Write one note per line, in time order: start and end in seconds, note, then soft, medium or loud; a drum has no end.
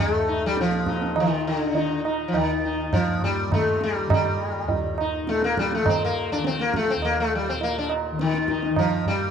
0.00 2.31 D#2 medium
0.00 0.56 A#2 medium
0.00 1.15 D#3 medium
0.00 0.44 A3 medium
0.28 0.56 D#4 soft
0.46 0.60 G3 medium
0.56 2.89 A#2 medium
0.56 tabla te medium
0.61 1.20 F3 medium
0.72 tabla te medium
0.86 1.15 D#4 soft
0.86 tabla ke medium
1.02 tabla te medium
1.15 1.73 D#3 medium
1.15 tabla na medium
1.20 1.47 D#3 medium
1.47 2.02 D3 medium
1.73 3.48 D#3 medium
1.73 2.04 D#4 soft
1.73 tabla tin medium
2.05 2.33 D#4 soft
2.05 tabla na medium
2.28 4.62 D#2 medium
2.28 2.35 F3 medium
2.34 2.96 D#3 medium
2.34 tabla na medium
2.65 2.92 D#4 soft
2.89 5.23 A#2 medium
2.89 tabla na medium
2.89 tabla ge medium
2.93 3.24 F3 medium
3.22 3.53 G3 medium
3.22 tabla ge medium
3.48 4.06 D#3 medium
3.48 tabla na medium
3.48 tabla ge medium
3.54 3.83 A3 medium
3.81 4.13 G3 medium
3.81 tabla te medium
4.06 5.81 D#3 medium
4.06 tabla na loud
4.06 tabla ge medium
4.14 4.97 G3 medium
4.63 6.95 D#2 medium
4.68 tabla tin medium
4.68 tabla ge medium
4.98 5.27 D#4 soft
4.98 tabla na medium
5.23 7.53 A#2 medium
5.27 5.44 A3 medium
5.27 tabla te medium
5.42 5.59 A#3 medium
5.42 tabla te medium
5.57 5.74 G3 medium
5.57 tabla ke medium
5.72 5.89 A3 medium
5.72 tabla te medium
5.81 6.38 D#3 medium
5.86 6.03 C4 medium
5.86 tabla na medium
5.86 tabla ge medium
6.04 6.32 A#3 medium
6.32 6.46 D4 medium
6.38 8.12 D#3 medium
6.44 6.61 C4 medium
6.44 tabla te medium
6.59 6.76 A#3 medium
6.59 tabla te medium
6.74 6.91 A3 medium
6.74 tabla ke medium
6.88 7.05 C4 medium
6.88 tabla te medium
6.95 9.27 D#2 medium
7.02 7.19 A#3 medium
7.02 tabla na medium
7.20 7.34 A3 medium
7.35 7.49 G3 medium
7.49 7.63 C4 medium
7.53 9.31 A#2 medium
7.61 7.78 A#3 medium
7.61 tabla tin medium
7.78 7.91 D4 medium
7.90 tabla na medium
8.12 8.70 D#3 medium
8.19 8.80 D#3 medium
8.19 tabla te medium
8.34 tabla te medium
8.48 8.76 D#4 soft
8.48 tabla ke medium
8.63 tabla te medium
8.70 9.31 D#3 medium
8.76 9.05 F3 medium
8.76 tabla na medium
8.76 tabla ge medium
9.06 9.31 G3 medium
9.06 tabla ge medium
9.27 9.31 D#2 medium